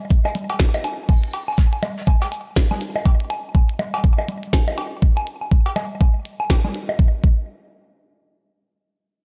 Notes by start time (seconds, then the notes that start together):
0.10 kick, closed hi-hat, shaker
0.25 high bongo, low woodblock
0.35 closed hi-hat, low conga, shaker
0.50 closed hi-hat, cowbell, low woodblock
0.59 kick, snare, shaker
0.74 closed hi-hat, high bongo
0.84 closed hi-hat, low woodblock, shaker
1.09 kick, open hi-hat, low woodblock
1.24 closed hi-hat
1.33 closed hi-hat, cowbell, shaker
1.48 low woodblock
1.58 kick, snare, shaker
1.73 closed hi-hat, low woodblock
1.83 closed hi-hat, high bongo, low conga, shaker
1.98 snare
2.07 kick, low woodblock, shaker
2.21 snare, cowbell
2.32 closed hi-hat, low woodblock, shaker
2.56 kick, snare, shaker
2.71 low conga, low woodblock
2.81 closed hi-hat, shaker
2.96 high bongo, low woodblock
3.06 kick, cowbell
3.20 closed hi-hat
3.30 closed hi-hat, low woodblock
3.55 kick, low woodblock
3.69 closed hi-hat
3.79 closed hi-hat, high bongo, low conga
3.94 cowbell, low woodblock
4.04 kick, closed hi-hat
4.18 high bongo, low woodblock
4.28 closed hi-hat, low conga
4.43 closed hi-hat
4.53 kick, snare, low woodblock
4.68 closed hi-hat, high bongo
4.78 closed hi-hat, cowbell, low woodblock
5.02 kick
5.17 closed hi-hat, low woodblock
5.27 closed hi-hat
5.41 low woodblock
5.51 kick
5.66 closed hi-hat, cowbell
5.76 closed hi-hat, high bongo, low conga, low woodblock
6.01 kick, low woodblock
6.25 closed hi-hat
6.40 low woodblock
6.50 kick, snare, cowbell
6.65 low conga, low woodblock
6.75 closed hi-hat
6.89 high bongo
6.99 kick
7.24 kick